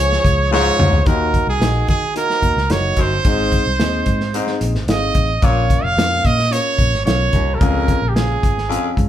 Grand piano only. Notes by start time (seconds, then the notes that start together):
Already playing: F4
0.00 G#4 C#5
0.51 F4 G#4 C#5
1.05 D#3 A#3 D#4 F#4 D#5
1.59 A#3 D#4 F#4 D#5
2.15 A#3 D#4 F#4 D#5
2.70 A#3 D#4 F#4 D#5
3.25 G#2 C4 D#4 G#4 D#5
3.79 C4 D#4 G#4 D#5
4.33 C4 D#4 G#4 D#5
4.88 C4 D#4 G#4 F5
5.42 A#2 C#4 F4 A#4 F5
5.97 C#4 F4 A#4 F5
6.50 C#4 F4 A#4 F5
7.05 C#4 F4 A#4 F5
7.61 C#3 C#4 F4 G#4 F5
8.16 C#4 F4 G#4 F5
8.69 C#4 F4 G#4 F5